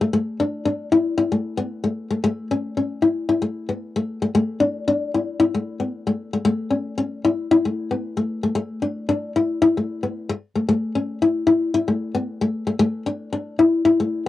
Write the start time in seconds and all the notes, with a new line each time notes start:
0.01 A3
0.13 A3
0.40 D4
0.65 D4
0.92 E4
1.18 E4
1.32 A3
1.57 B3
1.84 A3
2.10 A3
2.24 A3
2.51 C#4
2.77 C#4
3.02 E4
3.29 E4
3.42 A3
3.69 B3
3.96 A3
4.22 A3
4.35 A3
4.60 D4
4.88 D4
5.14 E4
5.40 E4
5.54 A3
5.80 B3
6.07 A3
6.33 A3
6.45 A3
6.70 C#4
6.98 C#4
7.25 E4
7.51 E4
7.65 A3
7.91 B3
8.17 A3
8.43 A3
8.55 A3
8.82 D4
9.09 D4
9.36 E4
9.62 E4
9.77 A3
10.03 B3
10.29 muted nylon-string guitar stroke
10.55 A3
10.69 A3
10.95 C#4
11.22 E4
11.47 E4
11.74 E4
11.88 A3
12.15 B3
12.41 A3
12.67 A3
12.79 A3
13.06 D4
13.33 D4
13.59 E4
13.85 E4
14.00 A3